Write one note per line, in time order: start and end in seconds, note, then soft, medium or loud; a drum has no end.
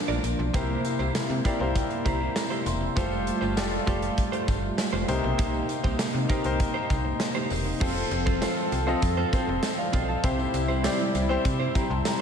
0.00 0.56 A#2 medium
0.00 0.52 F3 medium
0.00 0.52 A#3 medium
0.00 0.52 D4 medium
0.00 0.56 D4 medium
0.00 0.56 F4 medium
0.00 0.55 A#4 medium
0.00 0.56 B4 medium
0.00 0.55 C5 medium
0.00 0.56 D5 medium
0.08 0.20 A#1 medium
0.08 0.22 D4 medium
0.08 0.23 F4 medium
0.08 0.23 A#4 medium
0.08 0.23 D5 medium
0.24 0.35 A#1 medium
0.24 muted clean electric guitar stroke soft
0.24 closed hi-hat medium
0.24 tambourine medium
0.39 0.50 B1 medium
0.39 muted clean electric guitar stroke soft
0.54 0.77 C2 loud
0.54 1.41 C3 medium
0.54 2.94 C3 medium
0.54 0.82 A#3 medium
0.54 2.94 A#3 medium
0.54 1.23 E4 medium
0.54 0.82 E4 medium
0.54 2.94 E4 medium
0.54 1.23 G4 medium
0.54 0.82 G4 medium
0.54 1.23 A#4 medium
0.54 1.23 C5 medium
0.54 0.83 C5 medium
0.54 kick loud
0.54 closed hi-hat medium
0.54 tambourine soft
0.84 muted clean electric guitar stroke soft
0.84 closed hi-hat medium
0.84 tambourine soft
0.99 1.11 C2 loud
0.99 1.12 A#3 medium
0.99 1.12 E4 soft
0.99 1.11 G4 medium
0.99 1.11 C5 medium
0.99 tambourine soft
1.15 1.21 C3 soft
1.15 snare loud
1.15 closed hi-hat medium
1.15 tambourine medium
1.30 1.41 C3 medium
1.30 muted clean electric guitar stroke soft
1.45 1.60 A#3 medium
1.45 1.56 E4 medium
1.45 1.60 E4 medium
1.45 1.57 G4 medium
1.45 1.59 G4 medium
1.45 1.57 A#4 medium
1.45 1.59 C5 medium
1.45 1.57 D5 medium
1.45 1.59 E5 medium
1.45 kick medium
1.45 closed hi-hat medium
1.45 tambourine soft
1.60 1.83 C2 medium
1.60 2.52 E4 medium
1.60 2.52 G4 medium
1.60 2.52 A#4 medium
1.60 2.53 C5 medium
1.60 1.74 F5 medium
1.60 muted clean electric guitar stroke soft
1.75 2.04 G5 medium
1.75 muted clean electric guitar stroke soft
1.75 kick medium
1.75 closed hi-hat medium
1.75 tambourine soft
1.90 muted clean electric guitar stroke soft
1.90 closed hi-hat soft
2.05 2.28 C2 medium
2.05 2.20 A#3 medium
2.05 2.20 E4 medium
2.05 2.20 G4 medium
2.05 2.19 C5 medium
2.05 2.34 A#5 medium
2.05 kick medium
2.05 closed hi-hat medium
2.05 tambourine soft
2.20 2.33 A#3 soft
2.20 2.33 E4 medium
2.20 2.32 G4 medium
2.20 2.32 C5 medium
2.36 2.64 A#5 medium
2.36 snare loud
2.36 closed hi-hat medium
2.36 tambourine medium
2.50 2.65 A#3 medium
2.50 2.65 E4 medium
2.50 2.66 G4 medium
2.50 2.66 C5 medium
2.66 2.89 E1 medium
2.66 2.94 C6 medium
2.66 muted clean electric guitar stroke soft
2.66 closed hi-hat medium
2.66 tambourine medium
2.81 muted clean electric guitar stroke soft
2.96 3.31 F1 loud
2.96 5.07 G3 medium
2.96 3.24 A3 medium
2.96 5.07 A3 medium
2.96 3.42 F4 medium
2.96 3.25 F4 medium
2.96 5.07 F4 medium
2.96 3.42 G4 medium
2.96 3.25 G4 medium
2.96 3.43 A4 medium
2.96 3.43 C5 medium
2.96 3.25 C5 medium
2.96 kick loud
2.96 closed hi-hat medium
2.96 tambourine soft
3.12 tambourine soft
3.26 muted clean electric guitar stroke soft
3.26 closed hi-hat medium
3.26 tambourine soft
3.41 3.58 G1 medium
3.41 3.54 A3 medium
3.41 3.54 F4 medium
3.41 3.53 G4 medium
3.41 3.53 C5 medium
3.41 tambourine soft
3.57 3.80 F1 medium
3.57 3.80 F4 medium
3.57 3.80 G4 medium
3.57 3.80 A4 medium
3.57 3.81 D5 medium
3.57 snare loud
3.57 closed hi-hat medium
3.57 tambourine medium
3.72 muted clean electric guitar stroke soft
3.87 4.10 F1 loud
3.87 4.02 A3 medium
3.87 4.79 F4 medium
3.87 4.02 F4 medium
3.87 4.79 G4 medium
3.87 4.02 G4 medium
3.87 4.79 A4 medium
3.87 4.01 C5 medium
3.87 4.80 D5 medium
3.87 kick medium
3.87 closed hi-hat medium
3.87 tambourine soft
4.02 muted clean electric guitar stroke soft
4.02 closed hi-hat soft
4.02 tambourine soft
4.17 muted clean electric guitar stroke soft
4.17 kick medium
4.17 closed hi-hat medium
4.17 tambourine soft
4.32 4.46 A3 medium
4.32 4.47 F4 medium
4.32 4.47 G4 medium
4.32 4.47 C5 medium
4.32 closed hi-hat soft
4.47 4.71 G1 loud
4.47 muted clean electric guitar stroke soft
4.47 kick medium
4.47 closed hi-hat medium
4.47 tambourine soft
4.63 muted clean electric guitar stroke soft
4.78 muted clean electric guitar stroke soft
4.78 snare loud
4.78 closed hi-hat medium
4.78 tambourine medium
4.93 5.05 F1 medium
4.93 5.08 A3 medium
4.93 5.08 F4 medium
4.93 5.08 G4 medium
4.93 5.08 C5 medium
5.08 5.20 C2 medium
5.08 5.96 C3 medium
5.08 7.79 C3 medium
5.08 7.79 A#3 medium
5.08 6.05 D#4 medium
5.08 7.79 D#4 medium
5.08 6.05 G4 medium
5.08 6.06 A#4 medium
5.08 6.06 C5 loud
5.08 muted clean electric guitar stroke soft
5.08 closed hi-hat medium
5.08 tambourine medium
5.23 5.35 B1 medium
5.23 muted clean electric guitar stroke medium
5.38 5.62 C2 loud
5.38 5.66 A#3 medium
5.38 5.67 D#4 medium
5.38 5.67 G4 medium
5.38 5.67 C5 medium
5.38 kick loud
5.38 closed hi-hat medium
5.38 tambourine soft
5.54 tambourine soft
5.69 muted clean electric guitar stroke soft
5.69 closed hi-hat medium
5.69 tambourine soft
5.84 5.96 C2 medium
5.84 5.96 A#3 medium
5.84 5.96 D#4 medium
5.84 5.96 G4 medium
5.84 5.96 C5 medium
5.84 kick medium
5.84 tambourine soft
5.99 6.05 C3 soft
5.99 snare loud
5.99 closed hi-hat medium
5.99 tambourine medium
6.14 6.26 C3 medium
6.14 muted clean electric guitar stroke soft
6.29 6.44 A#3 medium
6.29 6.41 D#4 medium
6.29 6.45 D#4 medium
6.29 6.41 G4 medium
6.29 6.44 G4 medium
6.29 6.41 A#4 medium
6.29 6.43 C5 medium
6.29 6.42 D#5 medium
6.29 kick medium
6.29 closed hi-hat medium
6.29 tambourine soft
6.44 6.68 C2 medium
6.44 7.37 D#4 medium
6.44 7.37 G4 medium
6.44 7.37 A#4 medium
6.44 7.37 C5 medium
6.44 muted clean electric guitar stroke soft
6.44 closed hi-hat soft
6.59 muted clean electric guitar stroke soft
6.59 kick medium
6.59 closed hi-hat medium
6.59 tambourine soft
6.74 6.88 A#3 medium
6.74 6.89 D#4 medium
6.74 6.89 G4 medium
6.74 6.90 C5 medium
6.90 7.13 C2 loud
6.90 muted clean electric guitar stroke soft
6.90 kick medium
6.90 closed hi-hat medium
6.90 tambourine soft
7.05 muted clean electric guitar stroke medium
7.20 muted clean electric guitar stroke soft
7.20 snare loud
7.20 closed hi-hat medium
7.20 tambourine medium
7.35 7.49 A#3 medium
7.35 7.50 D#4 medium
7.35 7.50 G4 medium
7.35 7.50 C5 medium
7.50 7.74 E1 medium
7.50 muted clean electric guitar stroke soft
7.50 open hi-hat medium
7.50 tambourine medium
7.65 muted clean electric guitar stroke soft
7.80 8.04 F1 loud
7.80 10.21 F3 medium
7.80 7.96 C4 medium
7.80 8.27 C4 medium
7.80 10.21 C4 medium
7.80 7.96 F4 medium
7.80 8.27 F4 medium
7.80 10.21 A4 medium
7.80 8.27 A4 medium
7.80 7.95 A4 medium
7.80 8.28 C5 medium
7.80 7.95 C5 medium
7.80 kick loud
7.80 crash medium
7.80 tambourine soft
7.96 muted clean electric guitar stroke medium
7.96 tambourine soft
8.11 8.46 F1 loud
8.11 muted clean electric guitar stroke soft
8.11 closed hi-hat medium
8.11 tambourine soft
8.26 8.39 C4 medium
8.26 8.39 F4 medium
8.26 8.38 A4 medium
8.26 8.38 C5 medium
8.26 kick medium
8.26 tambourine soft
8.41 8.76 C4 medium
8.41 8.56 C4 medium
8.41 8.76 F4 medium
8.41 8.57 F4 medium
8.41 8.76 A4 medium
8.41 8.56 A4 medium
8.41 8.77 C5 medium
8.41 8.56 C5 medium
8.41 snare loud
8.41 closed hi-hat loud
8.41 tambourine medium
8.57 muted clean electric guitar stroke medium
8.72 8.95 C2 medium
8.72 muted clean electric guitar stroke soft
8.72 closed hi-hat medium
8.72 tambourine soft
8.87 9.22 C4 medium
8.87 9.00 C4 medium
8.87 9.22 F4 medium
8.87 8.99 F4 medium
8.87 9.22 A4 medium
8.87 8.99 A4 medium
8.87 8.99 C5 medium
8.87 9.22 D#5 loud
8.87 tambourine soft
9.02 9.25 F2 medium
9.02 kick medium
9.02 closed hi-hat loud
9.02 tambourine soft
9.17 9.31 C4 medium
9.17 9.32 F4 medium
9.17 9.33 A4 medium
9.17 9.32 C5 medium
9.33 9.44 C4 medium
9.33 9.67 C4 medium
9.33 9.68 F4 medium
9.33 9.45 F4 medium
9.33 9.68 A4 medium
9.33 9.45 A4 medium
9.33 9.68 C5 medium
9.33 9.45 C5 medium
9.33 kick loud
9.33 closed hi-hat medium
9.33 tambourine soft
9.48 9.59 F1 medium
9.48 muted clean electric guitar stroke soft
9.63 muted clean electric guitar stroke soft
9.63 snare loud
9.63 closed hi-hat medium
9.63 tambourine medium
9.78 9.93 D5 medium
9.78 9.93 F5 medium
9.78 muted clean electric guitar stroke soft
9.93 10.16 B1 medium
9.93 10.08 C4 medium
9.93 10.08 F4 medium
9.93 10.07 A4 medium
9.93 10.07 C5 medium
9.93 10.08 D#5 medium
9.93 10.08 G5 medium
9.93 kick medium
9.93 closed hi-hat medium
9.93 tambourine medium
10.08 10.21 C4 medium
10.08 10.21 F4 medium
10.08 10.20 A4 medium
10.08 10.20 C5 medium
10.08 10.38 F5 medium
10.08 10.38 A5 medium
10.23 10.46 C2 loud
10.23 11.11 C3 medium
10.23 12.21 C3 medium
10.23 12.21 G3 medium
10.23 10.38 C4 medium
10.23 10.70 C4 medium
10.23 10.70 E4 medium
10.23 10.38 E4 medium
10.23 12.21 E4 medium
10.23 10.70 G4 medium
10.23 10.38 G4 medium
10.23 10.70 C5 medium
10.23 10.37 C5 medium
10.23 kick loud
10.23 closed hi-hat loud
10.23 tambourine soft
10.38 muted clean electric guitar stroke soft
10.38 tambourine soft
10.53 10.88 C2 loud
10.53 muted clean electric guitar stroke soft
10.53 closed hi-hat medium
10.53 tambourine medium
10.68 10.81 C4 medium
10.68 10.81 E4 medium
10.68 10.81 G4 medium
10.68 10.80 C5 medium
10.84 10.99 C4 medium
10.84 11.19 C4 medium
10.84 11.19 E4 medium
10.84 10.99 E4 medium
10.84 11.19 G4 medium
10.84 10.99 G4 medium
10.84 10.98 C5 medium
10.84 11.19 D5 medium
10.84 snare loud
10.84 closed hi-hat loud
10.84 tambourine medium
10.99 muted clean electric guitar stroke soft
11.14 11.38 C2 loud
11.14 muted clean electric guitar stroke soft
11.14 closed hi-hat medium
11.14 tambourine soft
11.29 11.64 C4 medium
11.29 11.42 C4 soft
11.29 11.64 E4 medium
11.29 11.42 E4 medium
11.29 11.64 G4 medium
11.29 11.42 G4 medium
11.29 11.41 C5 medium
11.29 11.65 C5 loud
11.44 11.68 C3 loud
11.44 muted clean electric guitar stroke soft
11.44 kick medium
11.44 closed hi-hat medium
11.44 tambourine soft
11.60 11.73 C4 medium
11.60 11.74 E4 medium
11.60 11.75 G4 medium
11.60 11.75 C5 medium
11.75 11.86 C4 medium
11.75 11.87 E4 medium
11.75 11.87 G4 medium
11.75 11.87 C5 medium
11.75 11.90 G5 medium
11.75 11.90 A#5 medium
11.75 kick medium
11.75 closed hi-hat medium
11.75 tambourine soft
11.90 12.02 C2 medium
11.90 12.05 A5 medium
11.90 12.05 C6 medium
11.90 muted clean electric guitar stroke soft
12.05 12.20 G5 medium
12.05 12.20 A#5 medium
12.05 muted clean electric guitar stroke soft
12.05 snare loud
12.05 closed hi-hat medium
12.05 tambourine medium